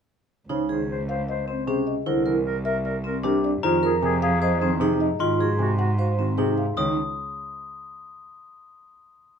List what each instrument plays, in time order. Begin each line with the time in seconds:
0.49 cello C#2, grand piano C#3, vibraphone D#4, clarinet C5, marimba C#5
0.69 grand piano D#3, vibraphone G#4, clarinet C5
0.90 clarinet C5
1.09 clarinet C5, marimba F5
1.28 clarinet C5, marimba D#5
1.47 vibraphone C4, clarinet C5
1.66 grand piano C3, vibraphone C#4, marimba G#4, clarinet C5
1.87 marimba D#5
2.06 cello C2, grand piano D3, vibraphone E4, clarinet A#4, marimba C5
2.24 grand piano E3, clarinet A#4, vibraphone A#4
2.44 clarinet A#4
2.64 clarinet A#4, marimba E5
2.84 clarinet A#4, marimba D5
3.04 vibraphone C4, clarinet A#4
3.23 grand piano C3, vibraphone D4, marimba G4, clarinet A#4
3.44 marimba D5
3.63 cello F2, grand piano D#3, vibraphone F4, clarinet G#4, marimba C5, glockenspiel A#5
3.83 grand piano F3, clarinet G#4, vibraphone A#4
4.02 grand piano C3, clarinet G#4, marimba G#5
4.22 clarinet G#4, marimba F5
4.41 clarinet G#4, vibraphone C5, marimba D#5
4.60 grand piano D#3, vibraphone C4, clarinet G#4
4.80 grand piano C3, vibraphone D#4, clarinet G#4, marimba G#4
5.00 marimba D#5
5.19 cello G#2, grand piano D#3, vibraphone F4, clarinet F#4, marimba D#5, glockenspiel C6
5.39 grand piano F3, clarinet F#4, vibraphone G#4
5.59 grand piano C3, clarinet F#4, marimba G#5
5.78 clarinet F#4, marimba F#5
5.98 clarinet F#4, vibraphone C5, marimba F5
6.18 grand piano D#3, vibraphone C4, clarinet F#4
6.38 grand piano C3, vibraphone D#4, clarinet F#4, marimba G#4
6.58 marimba F5
6.77 cello C#2, grand piano D#3, vibraphone D#4, marimba C#5, glockenspiel D#6